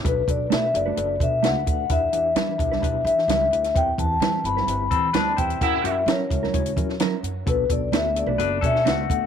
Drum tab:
HH |x-x-x-x-x-x-x-x-|x-x-x-x-x-x-x-xx|x-x-x-x-x-x-x-xx|x-x-x-x-xxx-x-x-|
SD |----o-------o---|----o--o---oo--o|----o--o----o---|----o--o---oo---|
BD |o-o-------o---o-|o-----o-o-------|o-o-------o---o-|o-----o-o-o-----|

HH |x-x-x-x-x-x-x-x-|
SD |----o------oo---|
BD |o-o-------o---o-|